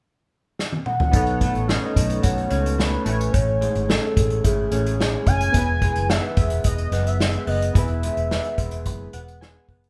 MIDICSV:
0, 0, Header, 1, 6, 480
1, 0, Start_track
1, 0, Key_signature, 4, "major"
1, 0, Tempo, 551471
1, 990, Time_signature, 4, 2, 24, 8
1, 8616, End_track
2, 0, Start_track
2, 0, Title_t, "Soft synth lead"
2, 0, Program_c, 0, 80
2, 748, Note_on_c, 0, 78, 102
2, 1461, Note_on_c, 0, 75, 90
2, 1474, Note_off_c, 0, 78, 0
2, 1933, Note_on_c, 0, 73, 94
2, 1946, Note_off_c, 0, 75, 0
2, 2421, Note_off_c, 0, 73, 0
2, 2426, Note_on_c, 0, 71, 90
2, 2893, Note_on_c, 0, 73, 88
2, 2906, Note_off_c, 0, 71, 0
2, 3387, Note_on_c, 0, 69, 89
2, 3400, Note_off_c, 0, 73, 0
2, 3865, Note_on_c, 0, 68, 84
2, 3878, Note_off_c, 0, 69, 0
2, 4575, Note_off_c, 0, 68, 0
2, 4580, Note_on_c, 0, 80, 113
2, 5304, Note_on_c, 0, 76, 96
2, 5317, Note_off_c, 0, 80, 0
2, 5779, Note_off_c, 0, 76, 0
2, 5784, Note_on_c, 0, 75, 95
2, 6151, Note_on_c, 0, 76, 87
2, 6164, Note_off_c, 0, 75, 0
2, 6511, Note_on_c, 0, 75, 90
2, 6524, Note_off_c, 0, 76, 0
2, 6770, Note_on_c, 0, 76, 101
2, 6783, Note_off_c, 0, 75, 0
2, 8197, Note_off_c, 0, 76, 0
2, 8616, End_track
3, 0, Start_track
3, 0, Title_t, "Synth keys"
3, 0, Program_c, 1, 88
3, 969, Note_on_c, 1, 59, 77
3, 982, Note_on_c, 1, 63, 73
3, 997, Note_on_c, 1, 69, 69
3, 1012, Note_on_c, 1, 73, 77
3, 1172, Control_c, 1, 64, 127
3, 2625, Note_off_c, 1, 59, 0
3, 2632, Note_off_c, 1, 63, 0
3, 2640, Note_off_c, 1, 69, 0
3, 2647, Note_off_c, 1, 73, 0
3, 2652, Note_on_c, 1, 57, 68
3, 2664, Note_on_c, 1, 64, 54
3, 2680, Control_c, 1, 64, 0
3, 2680, Note_on_c, 1, 80, 53
3, 2696, Note_on_c, 1, 73, 68
3, 2855, Control_c, 1, 64, 127
3, 4072, Note_off_c, 1, 57, 0
3, 4078, Note_off_c, 1, 64, 0
3, 4086, Note_off_c, 1, 80, 0
3, 4094, Note_off_c, 1, 73, 0
3, 4097, Note_on_c, 1, 57, 45
3, 4108, Note_on_c, 1, 64, 48
3, 4115, Note_on_c, 1, 68, 47
3, 4125, Note_on_c, 1, 73, 57
3, 4803, Note_on_c, 1, 59, 66
3, 4809, Note_off_c, 1, 64, 0
3, 4819, Note_on_c, 1, 64, 56
3, 4823, Note_off_c, 1, 57, 0
3, 4825, Note_off_c, 1, 68, 0
3, 4835, Note_on_c, 1, 68, 59
3, 4837, Note_off_c, 1, 73, 0
3, 4841, Control_c, 1, 64, 0
3, 4851, Note_on_c, 1, 71, 70
3, 4981, Control_c, 1, 64, 127
3, 6700, Note_off_c, 1, 59, 0
3, 6709, Note_off_c, 1, 64, 0
3, 6717, Note_off_c, 1, 68, 0
3, 6724, Note_off_c, 1, 71, 0
3, 6732, Note_on_c, 1, 59, 62
3, 6743, Note_on_c, 1, 64, 58
3, 6760, Note_on_c, 1, 68, 58
3, 6772, Note_on_c, 1, 71, 67
3, 7950, Note_on_c, 1, 78, 67
3, 8172, Note_off_c, 1, 78, 0
3, 8192, Note_on_c, 1, 80, 70
3, 8616, Note_off_c, 1, 59, 0
3, 8616, Note_off_c, 1, 64, 0
3, 8616, Note_off_c, 1, 68, 0
3, 8616, Note_off_c, 1, 71, 0
3, 8616, Note_off_c, 1, 80, 0
3, 8616, End_track
4, 0, Start_track
4, 0, Title_t, "Clean electric guitar"
4, 0, Program_c, 2, 27
4, 984, Note_on_c, 2, 47, 64
4, 1235, Note_on_c, 2, 57, 57
4, 1478, Note_on_c, 2, 61, 55
4, 1708, Note_off_c, 2, 57, 0
4, 1711, Note_on_c, 2, 57, 53
4, 1938, Note_on_c, 2, 66, 64
4, 2178, Note_off_c, 2, 61, 0
4, 2181, Note_on_c, 2, 61, 60
4, 2419, Note_off_c, 2, 57, 0
4, 2423, Note_on_c, 2, 57, 52
4, 2660, Note_off_c, 2, 47, 0
4, 2663, Note_on_c, 2, 45, 78
4, 2712, Note_off_c, 2, 66, 0
4, 2893, Note_off_c, 2, 45, 0
4, 2903, Note_on_c, 2, 45, 80
4, 3141, Note_off_c, 2, 57, 0
4, 3145, Note_on_c, 2, 56, 62
4, 3383, Note_off_c, 2, 61, 0
4, 3386, Note_on_c, 2, 61, 54
4, 3623, Note_off_c, 2, 56, 0
4, 3627, Note_on_c, 2, 56, 54
4, 3866, Note_on_c, 2, 64, 64
4, 4097, Note_off_c, 2, 61, 0
4, 4108, Note_on_c, 2, 61, 58
4, 4353, Note_off_c, 2, 56, 0
4, 4356, Note_on_c, 2, 56, 52
4, 4589, Note_off_c, 2, 61, 0
4, 4599, Note_on_c, 2, 61, 57
4, 4826, Note_off_c, 2, 45, 0
4, 4832, Note_on_c, 2, 52, 68
4, 4882, Note_off_c, 2, 61, 0
4, 5069, Note_off_c, 2, 56, 0
4, 5073, Note_on_c, 2, 56, 57
4, 5308, Note_on_c, 2, 59, 61
4, 5556, Note_off_c, 2, 56, 0
4, 5560, Note_on_c, 2, 56, 59
4, 6029, Note_off_c, 2, 59, 0
4, 6032, Note_on_c, 2, 59, 59
4, 6266, Note_off_c, 2, 56, 0
4, 6270, Note_on_c, 2, 56, 48
4, 6501, Note_off_c, 2, 59, 0
4, 6505, Note_on_c, 2, 59, 56
4, 6746, Note_off_c, 2, 52, 0
4, 6750, Note_on_c, 2, 52, 69
4, 6913, Note_off_c, 2, 64, 0
4, 6995, Note_off_c, 2, 56, 0
4, 6998, Note_on_c, 2, 56, 56
4, 7231, Note_off_c, 2, 59, 0
4, 7234, Note_on_c, 2, 59, 60
4, 7467, Note_off_c, 2, 56, 0
4, 7471, Note_on_c, 2, 56, 53
4, 7952, Note_off_c, 2, 59, 0
4, 7956, Note_on_c, 2, 59, 58
4, 8191, Note_off_c, 2, 56, 0
4, 8194, Note_on_c, 2, 56, 58
4, 8438, Note_off_c, 2, 59, 0
4, 8441, Note_on_c, 2, 59, 54
4, 8616, Note_off_c, 2, 52, 0
4, 8616, Note_off_c, 2, 56, 0
4, 8616, Note_off_c, 2, 59, 0
4, 8616, End_track
5, 0, Start_track
5, 0, Title_t, "Fingered electric bass"
5, 0, Program_c, 3, 33
5, 988, Note_on_c, 3, 35, 84
5, 1277, Note_off_c, 3, 35, 0
5, 1347, Note_on_c, 3, 33, 81
5, 1540, Note_off_c, 3, 33, 0
5, 1712, Note_on_c, 3, 35, 80
5, 1903, Note_off_c, 3, 35, 0
5, 1950, Note_on_c, 3, 35, 64
5, 2142, Note_off_c, 3, 35, 0
5, 2187, Note_on_c, 3, 37, 90
5, 2572, Note_off_c, 3, 37, 0
5, 2661, Note_on_c, 3, 33, 89
5, 2857, Note_off_c, 3, 33, 0
5, 2906, Note_on_c, 3, 33, 98
5, 3196, Note_off_c, 3, 33, 0
5, 3268, Note_on_c, 3, 32, 87
5, 3461, Note_off_c, 3, 32, 0
5, 3628, Note_on_c, 3, 33, 85
5, 3821, Note_off_c, 3, 33, 0
5, 3870, Note_on_c, 3, 32, 82
5, 4062, Note_off_c, 3, 32, 0
5, 4105, Note_on_c, 3, 33, 84
5, 4491, Note_off_c, 3, 33, 0
5, 4586, Note_on_c, 3, 30, 83
5, 4780, Note_off_c, 3, 30, 0
5, 4826, Note_on_c, 3, 28, 96
5, 5115, Note_off_c, 3, 28, 0
5, 5189, Note_on_c, 3, 30, 73
5, 5381, Note_off_c, 3, 30, 0
5, 5546, Note_on_c, 3, 28, 88
5, 5739, Note_off_c, 3, 28, 0
5, 5787, Note_on_c, 3, 28, 76
5, 5979, Note_off_c, 3, 28, 0
5, 6019, Note_on_c, 3, 30, 90
5, 6407, Note_off_c, 3, 30, 0
5, 6503, Note_on_c, 3, 30, 77
5, 6697, Note_off_c, 3, 30, 0
5, 6750, Note_on_c, 3, 28, 102
5, 7037, Note_off_c, 3, 28, 0
5, 7111, Note_on_c, 3, 28, 88
5, 7301, Note_off_c, 3, 28, 0
5, 7470, Note_on_c, 3, 28, 81
5, 7711, Note_off_c, 3, 28, 0
5, 7711, Note_on_c, 3, 30, 83
5, 7901, Note_off_c, 3, 30, 0
5, 7952, Note_on_c, 3, 28, 89
5, 8334, Note_off_c, 3, 28, 0
5, 8432, Note_on_c, 3, 30, 83
5, 8616, Note_off_c, 3, 30, 0
5, 8616, End_track
6, 0, Start_track
6, 0, Title_t, "Drums"
6, 516, Note_on_c, 9, 38, 61
6, 603, Note_off_c, 9, 38, 0
6, 631, Note_on_c, 9, 48, 69
6, 718, Note_off_c, 9, 48, 0
6, 748, Note_on_c, 9, 47, 79
6, 835, Note_off_c, 9, 47, 0
6, 870, Note_on_c, 9, 43, 95
6, 957, Note_off_c, 9, 43, 0
6, 987, Note_on_c, 9, 42, 86
6, 988, Note_on_c, 9, 36, 101
6, 1074, Note_off_c, 9, 42, 0
6, 1075, Note_off_c, 9, 36, 0
6, 1102, Note_on_c, 9, 42, 32
6, 1189, Note_off_c, 9, 42, 0
6, 1228, Note_on_c, 9, 36, 77
6, 1229, Note_on_c, 9, 42, 66
6, 1315, Note_off_c, 9, 36, 0
6, 1316, Note_off_c, 9, 42, 0
6, 1351, Note_on_c, 9, 42, 38
6, 1438, Note_off_c, 9, 42, 0
6, 1473, Note_on_c, 9, 38, 95
6, 1560, Note_off_c, 9, 38, 0
6, 1710, Note_on_c, 9, 36, 78
6, 1713, Note_on_c, 9, 42, 81
6, 1797, Note_off_c, 9, 36, 0
6, 1800, Note_off_c, 9, 42, 0
6, 1827, Note_on_c, 9, 42, 51
6, 1914, Note_off_c, 9, 42, 0
6, 1944, Note_on_c, 9, 42, 82
6, 1950, Note_on_c, 9, 36, 87
6, 2031, Note_off_c, 9, 42, 0
6, 2037, Note_off_c, 9, 36, 0
6, 2070, Note_on_c, 9, 42, 33
6, 2157, Note_off_c, 9, 42, 0
6, 2181, Note_on_c, 9, 42, 60
6, 2268, Note_off_c, 9, 42, 0
6, 2316, Note_on_c, 9, 42, 51
6, 2403, Note_off_c, 9, 42, 0
6, 2433, Note_on_c, 9, 38, 83
6, 2520, Note_off_c, 9, 38, 0
6, 2663, Note_on_c, 9, 42, 67
6, 2750, Note_off_c, 9, 42, 0
6, 2792, Note_on_c, 9, 42, 52
6, 2879, Note_off_c, 9, 42, 0
6, 2907, Note_on_c, 9, 42, 85
6, 2908, Note_on_c, 9, 36, 98
6, 2994, Note_off_c, 9, 42, 0
6, 2995, Note_off_c, 9, 36, 0
6, 3152, Note_on_c, 9, 42, 63
6, 3239, Note_off_c, 9, 42, 0
6, 3268, Note_on_c, 9, 42, 46
6, 3355, Note_off_c, 9, 42, 0
6, 3392, Note_on_c, 9, 38, 96
6, 3479, Note_off_c, 9, 38, 0
6, 3629, Note_on_c, 9, 36, 87
6, 3630, Note_on_c, 9, 42, 79
6, 3716, Note_off_c, 9, 36, 0
6, 3717, Note_off_c, 9, 42, 0
6, 3747, Note_on_c, 9, 42, 46
6, 3834, Note_off_c, 9, 42, 0
6, 3869, Note_on_c, 9, 36, 81
6, 3869, Note_on_c, 9, 42, 80
6, 3956, Note_off_c, 9, 36, 0
6, 3956, Note_off_c, 9, 42, 0
6, 4105, Note_on_c, 9, 42, 63
6, 4192, Note_off_c, 9, 42, 0
6, 4234, Note_on_c, 9, 42, 51
6, 4321, Note_off_c, 9, 42, 0
6, 4357, Note_on_c, 9, 38, 82
6, 4444, Note_off_c, 9, 38, 0
6, 4583, Note_on_c, 9, 42, 65
6, 4585, Note_on_c, 9, 36, 92
6, 4670, Note_off_c, 9, 42, 0
6, 4672, Note_off_c, 9, 36, 0
6, 4706, Note_on_c, 9, 42, 56
6, 4793, Note_off_c, 9, 42, 0
6, 4823, Note_on_c, 9, 42, 85
6, 4825, Note_on_c, 9, 36, 89
6, 4910, Note_off_c, 9, 42, 0
6, 4912, Note_off_c, 9, 36, 0
6, 5064, Note_on_c, 9, 36, 78
6, 5064, Note_on_c, 9, 42, 61
6, 5151, Note_off_c, 9, 36, 0
6, 5151, Note_off_c, 9, 42, 0
6, 5185, Note_on_c, 9, 42, 44
6, 5272, Note_off_c, 9, 42, 0
6, 5306, Note_on_c, 9, 38, 89
6, 5393, Note_off_c, 9, 38, 0
6, 5543, Note_on_c, 9, 42, 79
6, 5546, Note_on_c, 9, 36, 95
6, 5630, Note_off_c, 9, 42, 0
6, 5633, Note_off_c, 9, 36, 0
6, 5659, Note_on_c, 9, 42, 51
6, 5746, Note_off_c, 9, 42, 0
6, 5781, Note_on_c, 9, 42, 83
6, 5786, Note_on_c, 9, 36, 81
6, 5868, Note_off_c, 9, 42, 0
6, 5873, Note_off_c, 9, 36, 0
6, 5903, Note_on_c, 9, 42, 36
6, 5990, Note_off_c, 9, 42, 0
6, 6024, Note_on_c, 9, 42, 67
6, 6036, Note_on_c, 9, 38, 37
6, 6111, Note_off_c, 9, 42, 0
6, 6123, Note_off_c, 9, 38, 0
6, 6152, Note_on_c, 9, 42, 50
6, 6239, Note_off_c, 9, 42, 0
6, 6271, Note_on_c, 9, 38, 87
6, 6358, Note_off_c, 9, 38, 0
6, 6378, Note_on_c, 9, 42, 32
6, 6465, Note_off_c, 9, 42, 0
6, 6503, Note_on_c, 9, 46, 43
6, 6590, Note_off_c, 9, 46, 0
6, 6636, Note_on_c, 9, 42, 59
6, 6723, Note_off_c, 9, 42, 0
6, 6748, Note_on_c, 9, 36, 98
6, 6750, Note_on_c, 9, 42, 86
6, 6835, Note_off_c, 9, 36, 0
6, 6837, Note_off_c, 9, 42, 0
6, 6859, Note_on_c, 9, 42, 31
6, 6946, Note_off_c, 9, 42, 0
6, 6991, Note_on_c, 9, 42, 66
6, 7078, Note_off_c, 9, 42, 0
6, 7112, Note_on_c, 9, 42, 44
6, 7199, Note_off_c, 9, 42, 0
6, 7236, Note_on_c, 9, 38, 97
6, 7323, Note_off_c, 9, 38, 0
6, 7349, Note_on_c, 9, 42, 36
6, 7436, Note_off_c, 9, 42, 0
6, 7468, Note_on_c, 9, 42, 77
6, 7469, Note_on_c, 9, 36, 89
6, 7555, Note_off_c, 9, 42, 0
6, 7556, Note_off_c, 9, 36, 0
6, 7583, Note_on_c, 9, 42, 51
6, 7670, Note_off_c, 9, 42, 0
6, 7709, Note_on_c, 9, 42, 87
6, 7711, Note_on_c, 9, 36, 76
6, 7796, Note_off_c, 9, 42, 0
6, 7798, Note_off_c, 9, 36, 0
6, 7949, Note_on_c, 9, 42, 65
6, 8036, Note_off_c, 9, 42, 0
6, 8080, Note_on_c, 9, 42, 50
6, 8167, Note_off_c, 9, 42, 0
6, 8201, Note_on_c, 9, 38, 95
6, 8288, Note_off_c, 9, 38, 0
6, 8431, Note_on_c, 9, 36, 82
6, 8431, Note_on_c, 9, 46, 46
6, 8518, Note_off_c, 9, 36, 0
6, 8518, Note_off_c, 9, 46, 0
6, 8564, Note_on_c, 9, 42, 60
6, 8616, Note_off_c, 9, 42, 0
6, 8616, End_track
0, 0, End_of_file